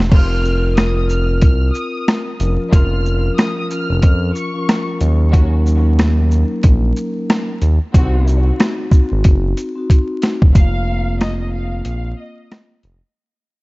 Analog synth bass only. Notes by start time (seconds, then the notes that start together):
0.00 E1
0.12 F1
1.42 C2
2.40 F1
2.73 F1
3.90 F1
4.03 F2
5.01 D#2
6.64 A#1
7.62 D#2
7.94 C2
9.12 G#1
9.25 F#1
10.42 E1
10.55 F1
11.86 A#1
12.84 F1